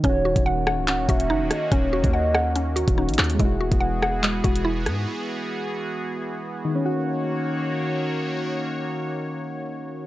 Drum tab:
HH |x-----x---------x---x-x-----x---|x-----x---------x---x-x---xxxxx-|x-----x---------x---x-x-----x---|--------------------------------|
CP |----------------x---------------|----------------------------x---|----------------x---------------|--------------------------------|
SD |------------r---------------r---|------------r---------------r---|------------r---------------r---|--------------------------------|
BD |o-----o-------------o-----------|o-----o---------------o---------|o-----o-------------o-----------|--------------------------------|

HH |--------------------------------|--------------------------------|
CP |--------------------------------|--------------------------------|
SD |--------------------------------|--------------------------------|
BD |--------------------------------|--------------------------------|